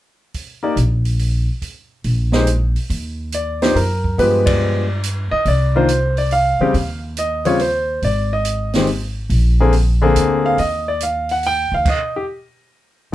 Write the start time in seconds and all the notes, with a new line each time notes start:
0.34 kick, open hi-hat
0.63 A#3 D#4 G4 D5
0.76 A#1, closed hi-hat
1.05 open hi-hat
1.19 open hi-hat
1.62 kick, open hi-hat
2.04 A#1, open hi-hat
2.32 G#3 D#4 G4 C5, snare
2.47 closed hi-hat
2.76 open hi-hat
2.90 D#2, kick, open hi-hat
3.32 D5, closed hi-hat
3.62 F3 D4 D#4 G4 C5, snare, open hi-hat
3.75 F#2 A#4, open hi-hat
4.04 kick
4.18 G2 F3 G#3 B3 G4 B4, kick, open hi-hat
4.46 D5, kick, ride
5.03 closed hi-hat
5.31 D#5, muted upright bass stroke
5.45 C2 D5, kick, open hi-hat
5.75 D#3 A#3 D4 F4 C5
5.89 closed hi-hat
6.17 D5, open hi-hat
6.31 F5, open hi-hat
6.59 C#3 G3 C4 G4, muted upright bass stroke
6.74 D#2, kick, open hi-hat
7.17 D#5, closed hi-hat
7.45 C#3 G3 C4 F4 C#5, open hi-hat
7.59 C5, open hi-hat
8.02 G#1 D5, kick, open hi-hat
8.33 D#5
8.45 closed hi-hat
8.73 D#3 G#3 C4 G4, snare, open hi-hat
8.87 open hi-hat
9.29 A#1, kick, open hi-hat
9.60 D3 A#3 C4 G#4
9.73 open hi-hat
10.02 D3 A#3 C4 G#4
10.15 D2, closed hi-hat
10.46 F5
10.58 D#2 D#5, kick, open hi-hat
10.88 D5
11.00 F5, closed hi-hat
11.29 F#5, open hi-hat
11.43 G5, open hi-hat
11.72 D2 F5
11.86 D#5, kick, crash
12.16 G4